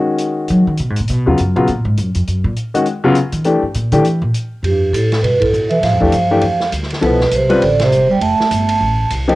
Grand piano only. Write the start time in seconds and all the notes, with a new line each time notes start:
Already playing: D#3 G#3 C#4 F#4
1.26 C#3 F#3 B3 F4
1.56 C#3 F#3 B3 F4
2.74 D#3 G#3 C#4 F#4
3.04 C#3 F#3 B3 F4
3.45 E3 A3 D4 G4
3.92 E3 A3 D4 G4
6.00 E3 A3 D4 G4
6.31 E3 A3 D4 G4
7.01 F3 B3 E4 A4
7.49 G3 C4 F4 B4
9.28 F3 A#3 D#4 G4